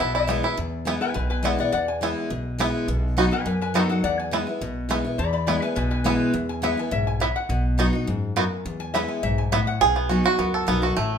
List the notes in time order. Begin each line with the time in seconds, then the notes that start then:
Already playing: B3
0.00 B1 B2 E4 E5
0.15 E4 E5
0.27 E3 G#3 B3 E4
0.43 B3 E4
0.57 E2
0.85 E3 G#3 B3 E4
1.01 B3 E4 B4 G#5
1.14 B1 B2 B4 G#5
1.30 B4 G#5
1.43 E3 G#3 B3 E4 D5 F#5
1.59 B3 E4 D5 F#5
1.72 E2 D5 F#5
1.88 G#5
2.01 E3 G#3 B3 E4
2.30 B1 B2
2.58 E3 G#3 B3 E4
2.88 B1 B2
3.17 F#3 B3 D#4 F#4
3.31 D#4 F#4 B4 G#5
3.46 F#2 B4 G#5
3.61 B4 G#5
3.74 F#3 B3 D#4 F#4 A4 F#5
3.89 D#4 F#4 A4 F#5
4.03 E2 D5 F#5
4.20 G#5
4.31 E3 G#3 B3 E4
4.47 B3 E4
4.61 B1 B2
4.89 E3 G#3 B3 E4
5.05 B3 E4
5.18 E2 D5 B5
5.33 D5 B5
5.47 E3 G#3 B3 E4 D5 B5
5.62 B3 E4 B4 G#5
5.76 B1 B2 B4 G#5
5.91 B4 G#5
6.04 E3 G#3 B3 E4 G#5
6.34 E2
6.49 G#5
6.62 E3 G#3 B3 E4 E5
6.77 B3 E4 G#5
6.91 B1 G#2 E5
7.07 G#5
7.20 A2 B3 E4 E5
7.36 F#5
7.49 B1 B2
7.78 F#3 B3 D#4 F#4
7.93 D#4 F#4
8.07 F#2 G#2
8.36 F#2 B3 D#4 F#4
8.65 E2
8.80 G#5
8.94 E3 G#3 B3 E4 E5
9.08 G#5
9.23 B1 G#2 E5
9.38 G#5
9.52 A2 B3 E4 E5
9.67 F#5
9.81 B1 B2 G#4
9.96 B3
10.09 F#3 B3 D#4 F#4
10.24 F#4
10.39 C#2 F#2 B3
10.54 A4
10.67 B1 F#3 B3 D#4 F#4
10.82 D#4 F#4
10.96 A1 A2 A3